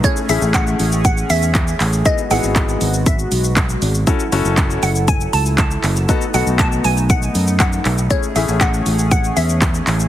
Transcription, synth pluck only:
X:1
M:4/4
L:1/16
Q:1/4=119
K:Alyd
V:1 name="Synth pluck"
c2 e2 f4 f2 e4 z2 | d2 f6 e6 z2 | z6 f2 g2 a2 a3 z | z2 f2 a2 g2 f4 f3 z |
c2 e2 f4 f2 e4 z2 |]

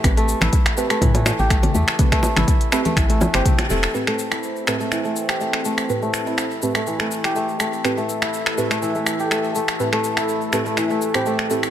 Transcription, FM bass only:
X:1
M:4/4
L:1/16
Q:"Swing 16ths" 1/4=123
K:Am
V:1 name="FM bass" clef=bass
A,,,2 z A,,, z4 A,,2 z A,,,2 z E,, z | z3 A,,, z4 A,,,2 z G,,, z2 E,,, z | z16 | z16 |
z16 | z16 |]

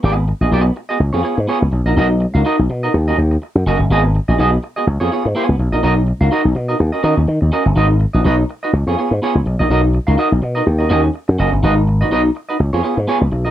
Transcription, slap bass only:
X:1
M:4/4
L:1/16
Q:"Swing 16ths" 1/4=124
K:Abdor
V:1 name="Slap bass" clef=bass
A,,,3 B,,, C,,2 z2 D,, F,, z A,, z D,, =B,,, ^A,,, | =B,,,3 D,, z B,,, =B,,2 E,,2 E,,2 z G,, G,,, =G,,, | A,,,3 B,,, C,,2 z2 D,, F,, z A,, z D,, =B,,, ^A,,, | =B,,,3 D,, z B,,, =B,,2 E,, z E, E,, E, E,, z =G,,, |
A,,,3 B,,, C,,2 z2 D,, F,, z A,, z D,, =B,,, ^A,,, | =B,,,3 D,, z B,,, =B,,2 E,,2 E,,2 z G,, G,,, =G,,, | A,,,3 B,,, C,,2 z2 D,, F,, z A,, z D,, =B,,, ^A,,, |]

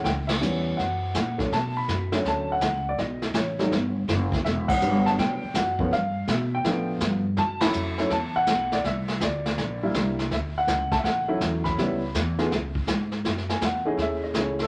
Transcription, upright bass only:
X:1
M:4/4
L:1/8
Q:"Swing" 1/4=164
K:C#m
V:1 name="Upright bass" clef=bass
C,,2 E,,2 F,,2 ^A,,2 | [K:Bm] B,,2 F,,2 D,,2 C,,2 | B,,,2 A,,,2 G,,,2 F,,,2 | E,,,2 G,,,2 B,,, z F,,2 |
G,,2 B,,2 A,,2 G,,2 | F,,2 ^E,,2 =E,,2 B,,,2 | =C,,2 D,,2 _B,,,2 C,,2 | D,,2 C,,2 A,,,2 E,,2 |
C,,2 E,,2 C,,2 ^G,,2 | [K:F#dor] F,,2 E,,2 D,,2 C,,2 |]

